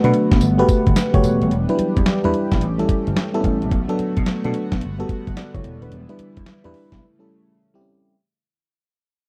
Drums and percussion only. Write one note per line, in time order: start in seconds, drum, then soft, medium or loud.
0.04 closed hi-hat medium
0.14 closed hi-hat medium
0.32 kick loud
0.32 snare medium
0.32 closed hi-hat medium
0.41 closed hi-hat medium
0.41 tambourine medium
0.59 closed hi-hat medium
0.69 kick medium
0.69 closed hi-hat medium
0.69 tambourine medium
0.87 kick medium
0.87 closed hi-hat medium
0.96 snare loud
0.96 closed hi-hat medium
0.96 tambourine loud
1.14 kick loud
1.14 closed hi-hat soft
1.24 closed hi-hat medium
1.24 tambourine medium
1.42 closed hi-hat soft
1.51 closed hi-hat medium
1.69 closed hi-hat medium
1.79 closed hi-hat medium
1.97 kick medium
1.97 closed hi-hat medium
2.06 snare loud
2.06 closed hi-hat medium
2.24 closed hi-hat soft
2.34 closed hi-hat medium
2.52 kick medium
2.52 snare medium
2.52 closed hi-hat medium
2.61 closed hi-hat medium
2.79 closed hi-hat medium
2.89 kick medium
2.89 closed hi-hat medium
3.07 closed hi-hat medium
3.17 snare loud
3.17 closed hi-hat medium
3.34 closed hi-hat medium
3.44 kick medium
3.44 closed hi-hat medium
3.62 closed hi-hat soft
3.71 kick loud
3.71 closed hi-hat medium
3.89 closed hi-hat medium
3.99 closed hi-hat medium
4.17 kick loud
4.17 closed hi-hat medium
4.26 snare loud
4.26 closed hi-hat medium
4.44 closed hi-hat medium
4.54 closed hi-hat medium
4.72 kick medium
4.72 snare medium
4.72 closed hi-hat medium
4.81 closed hi-hat medium
5.00 closed hi-hat medium
5.09 kick medium
5.09 closed hi-hat medium
5.27 kick medium
5.27 closed hi-hat soft
5.37 snare loud
5.37 closed hi-hat medium
5.54 kick loud
5.54 closed hi-hat soft
5.64 closed hi-hat medium
5.82 closed hi-hat soft
5.92 closed hi-hat medium
6.09 closed hi-hat medium
6.19 closed hi-hat medium
6.37 kick medium
6.37 closed hi-hat medium
6.46 snare loud
6.46 closed hi-hat medium
6.64 closed hi-hat medium
6.74 open hi-hat medium
6.92 kick medium
6.92 snare medium
6.92 closed hi-hat medium